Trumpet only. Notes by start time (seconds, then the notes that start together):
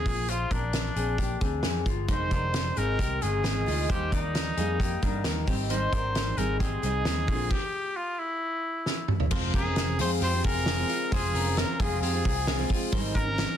Already playing: G#4
0.29 F4
0.52 D4
2.09 C5
2.78 A#4
3.22 G#4
3.91 G4
4.14 D#4
5.70 C5
6.38 A#4
6.60 G#4
7.51 G4
7.96 F4
8.19 E4
9.56 G#4
10.01 C5
10.23 C5
10.46 A#4
11.14 G#4
11.58 A#4
11.80 G#4
12.02 G#4
13.16 A#4